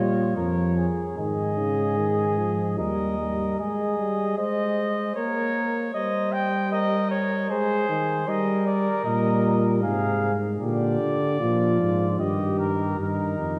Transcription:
Already playing: A#2 G3 F4 C#5
0.37 F2 F3 A#4 C#5
0.77 G#4
1.17 G#2 D#3 G#4 D#5
1.57 C#3
1.97 D#3
2.37 F3
2.78 D#2 G3 A#4 D#5
3.19 G3
3.59 G#3 G#4 D#5
3.99 G3
4.38 G#3 C5 D#5
5.16 A#3 A#4 C#5
5.94 G3 C5 D#5
6.32 G5
6.72 A#4 D#5
7.11 C#5
7.50 G#3 G#4 C5
7.89 D#3
8.27 G3 A#4 D#5
8.66 D5
9.05 A#2 G3 D#5
9.83 G#2 C3 G#4 F5
10.61 A#2 D3 G4 D5
11.01 D3
11.40 A#2 F3 F4
11.80 G#2
12.19 G2 D#3 G4 D#5
12.59 A#4
12.99 G2 D#3 D#4 A#4
13.38 F2

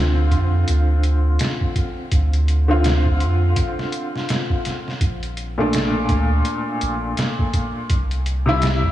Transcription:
Already playing: D2 D3 C4 F4
0.31 F2, kick, closed hi-hat
0.68 D2, closed hi-hat
1.03 closed hi-hat
1.39 snare, closed hi-hat
1.61 kick
1.76 kick, closed hi-hat
2.12 D2, kick, closed hi-hat
2.33 closed hi-hat
2.48 closed hi-hat
2.68 D3 C4 F4
2.84 snare, closed hi-hat
3.06 kick
3.20 F2, closed hi-hat
3.56 kick, closed hi-hat
3.79 snare
3.92 closed hi-hat
4.16 snare
4.29 snare, closed hi-hat
4.50 kick
4.65 snare, closed hi-hat
4.88 snare
5.01 A#1, kick, closed hi-hat
5.23 closed hi-hat
5.37 closed hi-hat
5.58 A#2 A3 D4
5.73 snare, closed hi-hat
6.09 D2, kick, closed hi-hat
6.45 closed hi-hat
6.81 A#1, closed hi-hat
7.17 snare, closed hi-hat
7.39 kick
7.53 kick, closed hi-hat
7.90 C2, kick, closed hi-hat
8.11 closed hi-hat
8.26 closed hi-hat
8.46 C3 G3 E4
8.62 snare, closed hi-hat
8.84 kick

